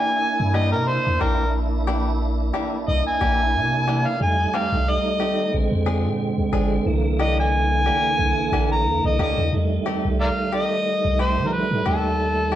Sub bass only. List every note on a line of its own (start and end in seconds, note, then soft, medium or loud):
0.40 0.74 G2 medium
0.73 0.99 C3 medium
1.07 1.18 E2 medium
1.21 2.52 A#1 medium
2.88 3.02 C2 loud
3.21 3.56 A#1 loud
3.55 4.07 C3 medium
4.21 4.47 F2 medium
4.72 4.98 C2 medium
5.54 5.68 A#1 medium
5.72 6.07 F2 medium
6.05 6.32 A#2 medium
6.38 6.50 D2 medium
6.53 6.79 G#1 loud
6.86 7.91 C2 loud
8.19 8.34 C2 medium
8.52 8.87 A#1 loud
8.86 9.00 E2 loud
9.04 9.18 C2 medium
9.19 9.36 D2 medium
9.37 9.51 E2 medium
9.53 9.79 F2 medium
10.05 10.31 C2 medium
11.05 11.39 C2 medium
11.38 11.64 F3 medium
11.71 11.83 A2 medium
11.86 12.55 D#2 medium